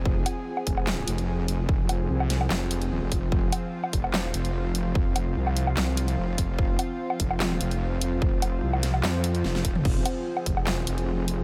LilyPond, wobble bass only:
\new Staff \with { instrumentName = "Wobble bass" } { \clef bass \time 4/4 \key f \minor \tempo 4 = 147 f,,8 r4 f,,4 f,,4. | f,,8 f,,8 c,4 f,,4 ees,,16 f,,8. | f,,8 r4 f,,4 f,,4. | f,,8 f,,8 c,4 c,4 f,,8 f,,16 f,,16 |
f,,8 r4 f,,4 f,,4. | f,,8 f,,8 c,4 f,4 f,,8 ees,,8 | f,,8 r4 f,,4 f,,4. | }